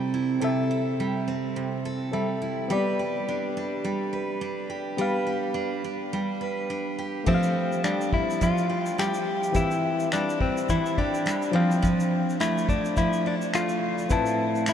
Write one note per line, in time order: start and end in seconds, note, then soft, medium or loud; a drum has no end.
0.00 0.40 C3 medium
0.00 0.99 G3 medium
0.00 0.38 C4 medium
0.00 1.26 C4 medium
0.00 0.13 E4 medium
0.00 0.38 A4 medium
0.00 0.41 A4 medium
0.00 0.39 E5 medium
0.14 0.70 E4 medium
0.41 1.55 C3 medium
0.41 2.09 C4 medium
0.41 1.84 A4 medium
0.41 2.10 A4 medium
0.41 2.11 E5 medium
0.71 2.40 E4 medium
1.00 2.13 G3 medium
1.28 2.77 C4 medium
1.56 2.77 C3 medium
1.85 2.70 A4 medium
2.12 2.70 G3 medium
2.12 2.70 C4 medium
2.12 2.70 A4 soft
2.12 2.71 E5 medium
2.42 2.77 E4 medium
2.68 3.84 G3 medium
2.68 4.93 B3 medium
2.68 4.94 G4 medium
2.68 4.12 B4 medium
2.72 4.95 D5 medium
2.99 4.69 G4 medium
3.29 3.56 D4 medium
3.57 4.40 D4 medium
3.85 4.98 G3 medium
4.13 4.98 B4 medium
4.41 5.53 D4 medium
4.70 5.26 G4 medium
4.97 6.13 G3 medium
4.97 7.22 B3 medium
4.97 7.23 G4 medium
4.97 6.40 B4 medium
5.01 7.24 F5 medium
5.27 6.98 G4 medium
5.54 5.83 D4 medium
5.84 6.69 D4 soft
6.13 7.83 G3 medium
6.41 7.33 B4 medium
6.70 7.33 D4 medium
6.99 8.44 G4 medium
7.24 8.40 F3 medium
7.24 9.50 A3 medium
7.24 7.84 C4 medium
7.24 9.50 G4 medium
7.24 7.34 E5 medium
7.24 kick medium
7.24 crash medium
7.34 9.55 F5 medium
7.43 shaker medium
7.72 shaker soft
7.84 8.98 G3 medium
7.84 8.11 D4 medium
7.84 finger snap medium
7.84 shaker medium
8.01 shaker soft
8.13 8.42 E4 medium
8.13 kick medium
8.30 shaker soft
8.41 9.54 F3 medium
8.41 8.99 F4 medium
8.41 kick medium
8.41 shaker medium
8.58 shaker soft
8.70 9.61 G4 medium
8.86 shaker medium
8.98 9.61 G3 medium
8.98 9.57 G4 medium
8.98 finger snap loud
8.98 shaker medium
9.14 shaker medium
9.43 shaker medium
9.52 11.49 E3 medium
9.52 10.69 E3 medium
9.52 11.50 C4 medium
9.52 10.09 E4 medium
9.52 11.51 G4 medium
9.52 11.51 E5 medium
9.52 kick medium
9.52 shaker medium
9.71 shaker soft
10.00 shaker soft
10.12 11.25 G3 medium
10.12 10.41 D4 medium
10.12 finger snap loud
10.12 shaker medium
10.29 shaker medium
10.41 10.70 C4 medium
10.41 kick medium
10.57 shaker soft
10.69 11.53 E3 medium
10.69 10.99 E4 medium
10.69 kick medium
10.69 shaker medium
10.86 shaker soft
10.98 11.55 D4 medium
10.98 11.61 G4 medium
10.98 kick medium
11.14 shaker soft
11.26 11.61 G3 medium
11.26 finger snap loud
11.26 shaker medium
11.42 shaker medium
11.52 13.77 F3 medium
11.52 11.81 F3 medium
11.52 12.36 C4 medium
11.52 13.78 D4 medium
11.52 13.79 C5 medium
11.52 13.79 F5 medium
11.56 finger snap soft
11.71 shaker medium
11.82 12.97 F3 medium
11.82 kick medium
11.82 shaker medium
12.00 shaker soft
12.30 shaker soft
12.40 13.54 A3 medium
12.40 12.67 E4 medium
12.40 finger snap medium
12.40 shaker medium
12.58 shaker medium
12.69 12.95 D4 medium
12.69 kick medium
12.69 shaker soft
12.85 shaker medium
12.97 14.18 F3 medium
12.97 13.27 E4 medium
12.97 kick medium
12.97 shaker medium
13.13 shaker soft
13.26 13.35 D4 medium
13.26 14.73 A4 medium
13.42 shaker medium
13.54 14.67 A3 medium
13.54 14.13 F4 loud
13.54 finger snap loud
13.54 shaker medium
13.69 shaker medium
13.98 shaker medium
14.09 14.73 A2 medium
14.09 14.73 C4 medium
14.09 14.64 E4 medium
14.09 14.73 B4 medium
14.09 14.73 A5 medium
14.09 kick loud
14.09 shaker medium
14.26 shaker soft
14.55 shaker soft
14.66 14.73 A3 medium
14.66 14.73 E4 medium
14.66 finger snap loud
14.66 shaker medium